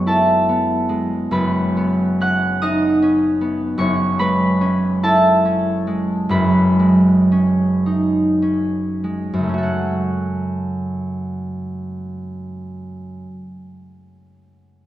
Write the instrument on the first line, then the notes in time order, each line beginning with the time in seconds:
harp
Already playing: F#1 F#2 F#3 G#3 A3 B3 C#5 D#5 E5 F#5 C#6 E6 F#6
0.07 E4 A4 A5
0.49 B3
0.89 G#3
1.31 F#1 F#2 B4 B5
1.77 B3
2.20 C#4 F#5 F#6
2.62 D#4 D#5 D#6
3.02 C#4
3.41 B3
3.78 F#1 F#2 C#5 C#6
4.19 G#3 B4 B5
4.61 C#4
5.03 E4 A4 A5
5.45 C#4
5.87 G#3
6.29 F#1 F#2 B4 B5
6.79 G#3
7.32 C#4
7.86 D#4
8.42 C#4
9.04 G#3
9.34 F#2
9.39 C#3
9.43 A3
9.49 C#4
9.54 F#4
9.58 A4
9.63 F#5